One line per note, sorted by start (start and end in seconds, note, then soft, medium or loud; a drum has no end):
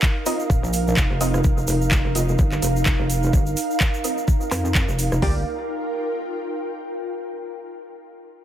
0.00 5.22 D#4 medium
0.00 5.22 A#4 medium
0.00 5.22 F5 medium
0.00 kick loud
0.00 clap loud
0.00 shaker soft
0.26 0.40 C4 medium
0.26 0.40 F4 medium
0.26 0.40 A#4 medium
0.26 0.40 D#5 medium
0.26 open hi-hat loud
0.26 shaker medium
0.40 shaker soft
0.50 0.61 D#1 medium
0.50 kick loud
0.50 shaker soft
0.63 0.95 A#1 medium
0.63 shaker soft
0.73 open hi-hat loud
0.73 shaker medium
0.88 shaker soft
0.97 1.08 F1 medium
0.97 kick loud
0.97 clap loud
0.97 shaker medium
1.10 1.43 F1 medium
1.21 1.41 C4 medium
1.21 1.41 F4 medium
1.21 1.41 A#4 medium
1.21 1.41 D#5 loud
1.21 open hi-hat medium
1.21 shaker medium
1.34 cross-stick medium
1.34 shaker soft
1.44 1.66 F1 medium
1.44 kick loud
1.44 shaker soft
1.58 shaker soft
1.67 2.03 F1 loud
1.67 open hi-hat medium
1.67 shaker medium
1.82 shaker soft
1.91 kick loud
1.91 clap loud
1.91 shaker soft
2.05 2.37 F1 loud
2.15 2.36 C4 medium
2.15 2.36 F4 medium
2.15 2.36 A#4 medium
2.15 2.36 D#5 medium
2.15 open hi-hat loud
2.15 shaker medium
2.29 shaker soft
2.38 2.61 G1 medium
2.38 kick loud
2.38 shaker soft
2.52 clap soft
2.52 shaker soft
2.62 2.84 F1 loud
2.62 open hi-hat loud
2.62 shaker medium
2.76 shaker soft
2.86 2.97 F1 medium
2.86 kick loud
2.86 clap loud
2.86 shaker soft
2.99 3.32 F1 medium
3.10 open hi-hat medium
3.10 shaker medium
3.23 shaker soft
3.33 3.55 G1 loud
3.33 kick loud
3.33 shaker medium
3.46 shaker soft
3.57 open hi-hat medium
3.57 shaker medium
3.71 shaker soft
3.80 kick loud
3.80 clap loud
3.80 shaker soft
3.94 shaker soft
4.04 4.18 C4 medium
4.04 4.18 F4 medium
4.04 4.18 A#4 medium
4.04 4.18 D#5 medium
4.04 open hi-hat loud
4.04 shaker medium
4.18 shaker soft
4.28 kick loud
4.28 shaker soft
4.41 shaker soft
4.51 4.86 F2 medium
4.51 cross-stick medium
4.51 clap soft
4.51 open hi-hat loud
4.51 shaker medium
4.65 shaker soft
4.75 kick loud
4.75 clap loud
4.75 shaker soft
4.88 5.10 F1 loud
4.88 shaker soft
4.99 open hi-hat loud
4.99 shaker medium
5.12 5.21 F1 medium
5.12 cross-stick medium
5.12 shaker soft
5.22 5.44 G1 loud
5.22 5.40 A#3 medium
5.22 7.07 F4 medium
5.22 5.40 F4 medium
5.22 5.40 G4 medium
5.22 5.40 D5 medium
5.22 kick loud
5.22 floor tom loud
5.22 open hi-hat medium
5.30 7.07 A#4 medium
5.38 7.07 G5 medium